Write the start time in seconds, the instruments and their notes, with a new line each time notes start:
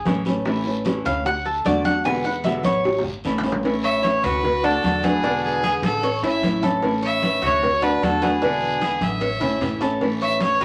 Already playing: cuban tres G#4
0.05 upright bass A1, nylon-string guitar E3 A3 C#4 E4, high bongo, low bongo, high conga, short guiro
0.25 nylon-string guitar A3 C#4 E4, high bongo, high conga, short guiro
0.45 nylon-string guitar E3 A3 C#4 E4, high bongo, high conga, long guiro
0.65 nylon-string guitar A3 C#4 E4, high bongo, high conga
0.84 nylon-string guitar E3 A3 C#4 E4, high bongo, high conga, short guiro
1.05 upright bass D2, nylon-string guitar A3 C#4 E4, cuban tres F5, high conga, low conga, short guiro
1.25 cuban tres F#5, muted nylon-string guitar stroke, high bongo, high conga, long guiro
1.45 cuban tres A4, high bongo, high conga
1.65 upright bass E2, nylon-string guitar D3 A3 D4 F#4, cuban tres D5, high bongo, low bongo, high conga, short guiro
1.84 nylon-string guitar A3 D4 F#4, cuban tres F#5, high bongo, high conga, short guiro
2.04 nylon-string guitar B2 D3 G#3 B3 E4, cuban tres G#5, high bongo, high conga, long guiro
2.25 nylon-string guitar G#3 B3 E4, cuban tres F#5, high bongo, high conga
2.44 nylon-string guitar B2 D3 G#3 B3 E4, cuban tres E5, high bongo, high conga, short guiro
2.63 upright bass A1, nylon-string guitar G#3 B3 E4, cuban tres C#5, high conga, short guiro
2.84 muted nylon-string guitar stroke, high bongo, long guiro
2.98 high bongo
3.03 upright bass G#1, low conga
3.24 upright bass A1, nylon-string guitar E3 A3 C#4 E4, short guiro
3.38 low bongo
3.43 nylon-string guitar A3 C#4 E4, low conga, short guiro
3.52 low bongo
3.63 nylon-string guitar E3 A3 C#4 E4, cowbell, high conga, long guiro
3.83 cuban tres C#5, fiddle E5, high conga
4.03 nylon-string guitar E3 A3 C#4 E4, fiddle C#5, cowbell, high conga, short guiro
4.23 upright bass D2, cuban tres F#4, fiddle B4, cowbell, high conga, low conga, short guiro
4.43 muted nylon-string guitar stroke, cowbell, high conga, low conga, long guiro
4.63 nylon-string guitar A3 D4 F#4, cuban tres D4, fiddle A4, cowbell, high conga
4.83 upright bass E2, nylon-string guitar D3 A3 D4 F#4, cowbell, high conga, short guiro
5.03 nylon-string guitar A3 D4 F#4, fiddle G#4, cuban tres B4, cowbell, high conga, short guiro
5.23 nylon-string guitar B2 D3 G#3 B3 E4, cuban tres D4, cowbell, long guiro
5.43 fiddle G#4, high conga
5.63 nylon-string guitar D3 G#3 B3 E4, cuban tres G#4, cowbell, high conga, short guiro
5.82 upright bass A1, fiddle A4, cowbell, high conga, short guiro
6.03 cuban tres C#5, muted nylon-string guitar stroke, cowbell, high conga, long guiro
6.22 upright bass G#1, nylon-string guitar A3 C#4 E4, cuban tres E4, fiddle E5, cowbell, high conga
6.42 upright bass A1, nylon-string guitar E3 A3 C#4 E4, cowbell, high conga, short guiro
6.63 nylon-string guitar A3 C#4 E4, cuban tres A4, high conga, short guiro
6.82 nylon-string guitar E3 A3 C#4 E4, cowbell, long guiro
7.02 cuban tres C#5, fiddle E5, high conga
7.22 nylon-string guitar E3 A3 C#4 E4, cowbell, high conga, short guiro
7.42 upright bass D2, cuban tres F#4, cowbell, high conga, low conga, short guiro
7.46 fiddle C#5
7.62 muted nylon-string guitar stroke, cowbell, high conga, low conga, long guiro
7.82 nylon-string guitar A3 D4 F#4, cuban tres D4, fiddle B4, cowbell, high conga
8.02 upright bass E2, nylon-string guitar D3 A3 D4 F#4, fiddle A4, cowbell, high conga, short guiro
8.22 nylon-string guitar A3 D4 F#4, fiddle G#4, cuban tres B4, cowbell, high conga, short guiro
8.42 nylon-string guitar B2 D3 G#3 B3 E4, cuban tres D4, cowbell, high conga, long guiro
8.62 high conga
8.81 nylon-string guitar D3 G#3 B3 E4, cuban tres G#4, cowbell, high conga, short guiro
9.01 upright bass A1, fiddle E5, cowbell, high conga, short guiro
9.21 cuban tres C#5, muted nylon-string guitar stroke, cowbell, long guiro
9.40 upright bass G#1, nylon-string guitar A3 C#4 E4, cuban tres E4, cowbell, low conga
9.60 upright bass A1, nylon-string guitar E3 A3 C#4 E4, cowbell, low conga, short guiro
9.80 nylon-string guitar A3 C#4 E4, cuban tres A4, low conga, short guiro
10.01 nylon-string guitar E3 A3 C#4 E4, cowbell, high conga, long guiro
10.20 cuban tres C#5, fiddle E5, high conga
10.40 nylon-string guitar E3 A3 C#4 E4, fiddle C#5, cowbell, high conga, short guiro
10.60 upright bass D2, cuban tres F#4, cowbell, high conga, low conga, short guiro